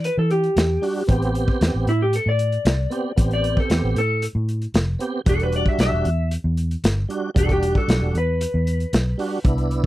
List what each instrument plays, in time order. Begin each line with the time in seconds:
0.04 electric slide guitar B4, closed hi-hat
0.18 fingered electric bass E3, electric slide guitar A4
0.30 electric slide guitar G4, closed hi-hat
0.44 closed hi-hat
0.56 fingered electric bass E2, snare, closed hi-hat
0.82 tonewheel organ G3 D4 F#4, open hi-hat
1.07 fingered electric bass A1, tonewheel organ B3 C4 G4, kick, closed hi-hat
1.22 closed hi-hat
1.35 closed hi-hat
1.48 kick
1.61 fingered electric bass E2, snare, closed hi-hat
1.74 fingered electric bass A1
1.87 fingered electric bass A2, electric slide guitar E4, closed hi-hat
2.02 electric slide guitar G4
2.13 electric slide guitar A4, closed hi-hat
2.26 fingered electric bass A2, electric slide guitar D5
2.39 closed hi-hat
2.52 closed hi-hat
2.65 fingered electric bass C2, snare, closed hi-hat
2.90 tonewheel organ B3 C4 G4, closed hi-hat
3.16 fingered electric bass A1, tonewheel organ B3 C4 G4, kick, closed hi-hat
3.31 electric slide guitar D5, closed hi-hat
3.44 closed hi-hat
3.57 electric slide guitar A4, kick
3.70 fingered electric bass E2, snare, closed hi-hat
3.83 fingered electric bass A1
3.96 fingered electric bass A2, electric slide guitar A4, closed hi-hat
4.22 closed hi-hat
4.35 fingered electric bass A2
4.49 closed hi-hat
4.62 closed hi-hat
4.74 fingered electric bass F1, snare, closed hi-hat
4.99 tonewheel organ B3 C4 G4, closed hi-hat
5.25 fingered electric bass E1, tonewheel organ G3 D4 F#4, electric slide guitar A4, kick, closed hi-hat
5.39 electric slide guitar B4, closed hi-hat
5.52 electric slide guitar D5, closed hi-hat
5.66 electric slide guitar E5, kick
5.79 fingered electric bass B1, electric slide guitar E5, snare, closed hi-hat
5.92 fingered electric bass E1
6.05 fingered electric bass E2, closed hi-hat
6.31 closed hi-hat
6.44 fingered electric bass E2
6.57 closed hi-hat
6.71 closed hi-hat
6.84 fingered electric bass G1, snare, closed hi-hat
7.09 tonewheel organ G3 D4 F#4, closed hi-hat
7.34 fingered electric bass E1, tonewheel organ G3 D4 F#4, electric slide guitar A4, kick, closed hi-hat
7.49 electric slide guitar G4, kick, closed hi-hat
7.62 closed hi-hat
7.75 electric slide guitar A4, kick
7.88 fingered electric bass B1, snare, closed hi-hat
8.01 fingered electric bass E1
8.14 fingered electric bass E2, electric slide guitar B4, closed hi-hat
8.41 closed hi-hat
8.54 fingered electric bass E2
8.67 closed hi-hat
8.80 closed hi-hat
8.93 fingered electric bass B1, snare, closed hi-hat
9.18 tonewheel organ G3 D4 F#4, open hi-hat
9.44 fingered electric bass C2, tonewheel organ B3 D4 E4, kick, closed hi-hat
9.58 closed hi-hat
9.71 closed hi-hat